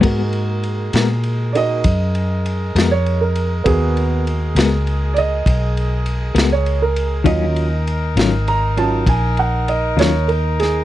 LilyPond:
<<
  \new Staff \with { instrumentName = "Upright piano" } { \time 12/8 \key aes \dorian \tempo 4. = 66 << { bes'4. r4 <d'' ees''>2~ <d'' ees''>16 des''8 bes'8. | aes'4 r4. <d'' ees''>2~ <d'' ees''>16 des''8 bes'8. | ees''4 r4 bes''8 a''8 aes''8 ges''8 ees''8 des''8 bes'8 aes'8 | } \\ { <aes bes ges'>2~ <aes bes ges'>8 <bes ees' ges'>8 r2. | <bes ces' ges'>1. | <ges des' f'>8 r2 <ges des' f'>8 r2. | } >> }
  \new Staff \with { instrumentName = "Horn section" } { \time 12/8 \key aes \dorian << { <aes bes'>1.~ | <aes bes'>1. | ees'1. | } \\ { r1. | aes'1. | bes'1. | } >> }
  \new Staff \with { instrumentName = "Clean electric guitar" } { \time 12/8 \key aes \dorian <aes ces' ges' bes'>8 r4 <aes ces' ges' bes'>8 r2 r8 <aes ces' ges' bes'>8 r4 | r4. <aes ces' ges' bes'>8 r2 r8 <aes ces' ges' bes'>8 r4 | <ees ges des' f'>8 r4 <ees ges des' f'>8 r2 r8 <ees ges des' f'>8 r4 | }
  \new Staff \with { instrumentName = "Fingered electric bass" } { \clef bass \time 12/8 \key aes \dorian aes,4. bes,4. ges,4. f,4. | ees,4. des,4. ces,4. des,4. | ees,4. aes,,4. bes,,4. ees,4. | }
  \new DrumStaff \with { instrumentName = "Drums" } \drummode { \time 12/8 <cymc bd cymr>8 cymr8 cymr8 <cymr sn>8 cymr8 cymr8 <bd cymr>8 cymr8 cymr8 <cymr sn>8 cymr8 cymr8 | <bd cymr>8 cymr8 cymr8 <cymr sn>8 cymr8 cymr8 <bd cymr>8 cymr8 cymr8 <cymr sn>8 cymr8 cymr8 | <bd cymr>8 cymr8 cymr8 <cymr sn>8 cymr8 cymr8 <bd cymr>8 cymr8 cymr8 <cymr sn>8 cymr8 <cymr sn>8 | }
>>